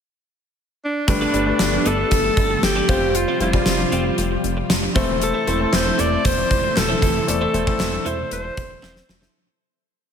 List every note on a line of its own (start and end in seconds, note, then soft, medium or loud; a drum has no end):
0.84 1.07 D4 medium
1.07 1.27 G1 medium
1.07 1.81 G2 medium
1.07 2.87 D3 medium
1.07 2.87 G3 medium
1.07 1.26 A3 medium
1.07 2.87 A3 medium
1.07 2.87 B3 medium
1.07 1.26 D4 medium
1.07 1.88 D4 medium
1.07 1.26 G4 medium
1.07 4.92 G4 medium
1.07 1.26 B4 medium
1.07 muted clean electric guitar stroke soft
1.07 kick loud
1.07 closed hi-hat medium
1.21 1.33 B3 medium
1.21 1.33 D4 medium
1.21 1.34 A4 medium
1.21 1.34 B4 medium
1.33 1.52 G1 medium
1.33 1.42 A3 medium
1.33 1.50 B3 medium
1.33 1.42 D4 medium
1.33 1.46 D4 medium
1.33 1.43 G4 medium
1.33 1.46 A4 medium
1.33 1.43 B4 medium
1.33 1.46 B4 medium
1.33 closed hi-hat medium
1.46 2.19 A3 medium
1.46 2.20 D4 medium
1.46 2.20 G4 medium
1.46 2.20 B4 medium
1.46 muted clean electric guitar stroke soft
1.59 1.78 G1 medium
1.59 snare loud
1.59 closed hi-hat medium
1.73 muted clean electric guitar stroke soft
1.86 2.04 G1 loud
1.86 2.06 B3 medium
1.86 1.98 D4 medium
1.86 1.98 A4 medium
1.86 2.65 A4 loud
1.86 1.97 B4 medium
1.86 closed hi-hat medium
1.99 muted clean electric guitar stroke soft
2.11 2.30 G1 loud
2.11 muted clean electric guitar stroke soft
2.11 kick medium
2.11 closed hi-hat medium
2.24 muted clean electric guitar stroke soft
2.37 2.56 G1 loud
2.37 kick medium
2.37 closed hi-hat medium
2.50 muted clean electric guitar stroke soft
2.63 2.81 G1 loud
2.63 3.17 G4 medium
2.63 muted clean electric guitar stroke soft
2.63 snare loud
2.63 closed hi-hat medium
2.76 2.88 B3 medium
2.76 2.89 D4 medium
2.76 2.89 A4 medium
2.76 2.90 B4 medium
2.88 3.26 F1 medium
2.88 4.94 C3 medium
2.88 4.94 F3 medium
2.88 3.30 G3 medium
2.88 4.94 G3 medium
2.88 3.30 C4 medium
2.88 3.05 C4 medium
2.88 4.94 F4 medium
2.88 3.30 F4 medium
2.88 3.02 F4 medium
2.88 3.02 G4 medium
2.88 3.30 C5 medium
2.88 3.01 C5 medium
2.88 kick medium
2.88 closed hi-hat medium
3.02 muted clean electric guitar stroke soft
3.15 3.40 F4 medium
3.15 muted clean electric guitar stroke soft
3.15 closed hi-hat loud
3.28 3.40 C4 medium
3.28 3.40 F4 medium
3.28 3.41 G4 medium
3.28 3.41 C5 medium
3.40 3.59 F1 medium
3.40 3.49 G3 medium
3.40 3.50 C4 medium
3.40 3.57 C4 medium
3.40 3.50 F4 medium
3.40 4.40 F4 medium
3.40 3.54 F4 medium
3.40 3.53 G4 medium
3.40 3.50 C5 medium
3.40 3.53 C5 medium
3.40 closed hi-hat medium
3.53 4.26 G3 medium
3.53 4.26 C4 medium
3.53 4.27 F4 medium
3.53 4.27 D5 medium
3.53 muted clean electric guitar stroke soft
3.53 kick medium
3.66 3.85 F1 medium
3.66 snare loud
3.66 closed hi-hat medium
3.80 muted clean electric guitar stroke soft
3.92 4.11 F1 loud
3.92 4.13 C4 medium
3.92 4.05 F4 medium
3.92 4.05 G4 medium
3.92 4.04 C5 medium
3.92 closed hi-hat medium
4.05 muted clean electric guitar stroke medium
4.18 4.37 F1 loud
4.18 muted clean electric guitar stroke soft
4.18 closed hi-hat medium
4.31 muted clean electric guitar stroke soft
4.44 4.63 F1 medium
4.44 closed hi-hat medium
4.57 muted clean electric guitar stroke soft
4.70 4.88 F1 medium
4.70 muted clean electric guitar stroke soft
4.70 snare loud
4.70 closed hi-hat medium
4.83 muted clean electric guitar stroke medium
4.95 5.33 E1 medium
4.95 9.31 C3 medium
4.95 9.31 E3 medium
4.95 5.69 E3 medium
4.95 5.37 A3 medium
4.95 9.31 A3 medium
4.95 5.16 C4 medium
4.95 5.37 C4 medium
4.95 9.31 E4 medium
4.95 5.37 E4 medium
4.95 5.08 E4 medium
4.95 9.31 A4 medium
4.95 5.08 A4 medium
4.95 5.37 C5 medium
4.95 5.07 C5 medium
4.95 kick loud
4.95 closed hi-hat medium
5.09 muted clean electric guitar stroke soft
5.21 5.75 A4 medium
5.21 muted clean electric guitar stroke soft
5.21 closed hi-hat medium
5.34 5.45 C4 medium
5.34 5.46 E4 medium
5.34 5.46 A4 medium
5.34 5.47 C5 medium
5.46 5.66 E1 medium
5.46 5.56 A3 medium
5.46 5.63 C4 medium
5.46 5.56 C4 medium
5.46 5.60 E4 medium
5.46 5.57 E4 medium
5.46 5.59 A4 medium
5.46 5.59 C5 medium
5.46 5.57 C5 medium
5.46 closed hi-hat medium
5.60 6.33 A3 medium
5.60 6.33 C4 medium
5.60 6.34 E4 medium
5.60 6.34 C5 medium
5.60 muted clean electric guitar stroke soft
5.73 5.92 E1 medium
5.73 6.01 C5 medium
5.73 snare loud
5.73 clap medium
5.73 closed hi-hat medium
5.86 muted clean electric guitar stroke medium
5.98 6.18 E1 loud
5.98 6.19 C4 medium
5.98 6.11 E4 medium
5.98 6.11 A4 medium
5.98 6.11 C5 medium
5.98 6.27 D5 loud
5.98 clap medium
5.98 closed hi-hat medium
6.12 muted clean electric guitar stroke soft
6.24 6.44 E1 loud
6.24 6.79 C5 loud
6.24 muted clean electric guitar stroke soft
6.24 kick medium
6.24 closed hi-hat medium
6.38 muted clean electric guitar stroke soft
6.51 6.69 E1 medium
6.51 kick medium
6.51 closed hi-hat medium
6.64 muted clean electric guitar stroke medium
6.76 6.95 E1 loud
6.76 7.28 A4 medium
6.76 muted clean electric guitar stroke soft
6.76 snare loud
6.76 clap medium
6.76 closed hi-hat medium
6.89 7.01 C4 medium
6.89 7.01 E4 medium
6.89 7.01 A4 medium
6.89 7.02 C5 medium
7.02 7.21 F1 medium
7.02 7.76 E3 medium
7.02 7.19 C4 medium
7.02 7.14 E4 medium
7.02 7.14 A4 medium
7.02 7.14 C5 medium
7.02 kick medium
7.02 closed hi-hat medium
7.15 muted clean electric guitar stroke soft
7.27 7.47 E1 loud
7.27 7.46 A3 medium
7.27 7.46 C4 medium
7.27 7.47 E4 medium
7.27 8.08 A4 medium
7.27 7.47 D5 medium
7.27 muted clean electric guitar stroke soft
7.27 closed hi-hat medium
7.41 7.52 C4 medium
7.41 7.52 E4 medium
7.41 7.53 A4 medium
7.41 7.53 C5 medium
7.53 7.73 E1 loud
7.53 7.63 A3 medium
7.53 7.70 C4 medium
7.53 7.63 C4 medium
7.53 7.66 E4 medium
7.53 7.63 E4 medium
7.53 7.66 A4 medium
7.53 7.66 C5 medium
7.53 7.64 C5 medium
7.53 closed hi-hat medium
7.67 8.40 A3 medium
7.67 8.40 C4 medium
7.67 8.41 E4 medium
7.67 8.41 C5 medium
7.67 muted clean electric guitar stroke soft
7.67 kick medium
7.80 7.99 E1 medium
7.80 snare loud
7.80 clap medium
7.80 closed hi-hat medium
7.93 muted clean electric guitar stroke soft
8.05 8.24 E1 loud
8.05 8.26 C4 medium
8.05 8.18 E4 medium
8.05 8.17 A4 medium
8.05 8.31 C5 medium
8.05 8.17 C5 medium
8.05 closed hi-hat medium
8.18 muted clean electric guitar stroke medium
8.31 8.50 E1 loud
8.31 9.06 C5 medium
8.31 muted clean electric guitar stroke soft
8.31 closed hi-hat medium
8.44 muted clean electric guitar stroke soft
8.57 8.76 E1 medium
8.57 kick medium
8.57 closed hi-hat medium
8.70 muted clean electric guitar stroke soft
8.82 9.02 E1 loud
8.82 9.04 C4 medium
8.82 8.95 E4 medium
8.82 8.95 A4 medium
8.82 8.95 C5 medium
8.82 snare medium
8.82 clap medium
8.96 muted clean electric guitar stroke soft
8.96 snare medium
9.09 9.28 F1 loud
9.09 muted clean electric guitar stroke soft
9.09 snare medium
9.21 9.39 C4 soft
9.21 9.39 E4 medium
9.21 9.38 A4 medium
9.21 9.38 C5 medium
9.21 snare medium